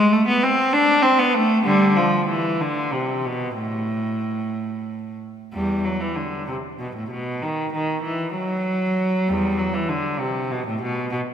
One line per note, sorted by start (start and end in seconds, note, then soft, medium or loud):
0.00 0.12 G#3 loud
0.12 0.27 A3 medium
0.28 0.42 B3 medium
0.43 0.73 C4 medium
0.73 1.04 D4 medium
1.02 1.18 C4 medium
1.19 1.34 B3 medium
1.34 1.65 A3 medium
1.63 1.94 D3 medium
1.63 1.95 G3 medium
1.96 2.28 F3 medium
2.28 2.59 E3 medium
2.61 2.93 D3 medium
2.93 3.25 C3 medium
3.25 3.58 B2 medium
3.58 5.18 A2 medium
5.53 5.83 E2 soft
5.53 5.83 G3 medium
5.85 6.01 F#3 medium
6.00 6.17 E3 soft
6.16 6.48 D3 soft
6.48 6.56 C3 medium
6.79 6.95 B2 medium
6.95 7.11 A2 soft
7.10 7.41 B2 medium
7.42 7.72 D#3 medium
7.73 8.03 D#3 medium
8.03 8.34 E3 medium
8.34 9.25 F#3 medium
9.28 9.57 E2 medium
9.28 9.59 G3 medium
9.58 9.73 F#3 medium
9.74 9.89 E3 medium
9.89 10.20 D3 medium
10.19 10.50 C3 medium
10.51 10.66 B2 medium
10.67 10.81 A2 medium
10.82 11.11 B2 medium
11.12 11.20 B2 medium